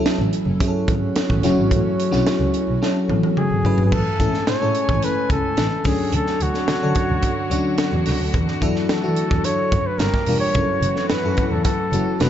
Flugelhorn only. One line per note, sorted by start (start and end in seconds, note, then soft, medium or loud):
3.38 3.82 G#4 medium
3.86 3.95 G#4 medium
3.93 4.48 A4 loud
4.48 5.06 C#5 medium
5.04 5.31 B4 loud
5.31 5.89 A4 medium
5.88 6.14 G#4 medium
6.15 6.44 A4 medium
6.42 8.07 F#4 medium
8.91 9.46 A4 medium
9.45 9.88 C#5 loud
9.86 10.00 B4 medium
9.98 10.39 A#4 medium
10.40 11.06 C#5 medium
11.09 11.53 B4 medium
11.51 11.64 A4 medium
11.64 12.22 A4 medium
12.21 12.30 B4 medium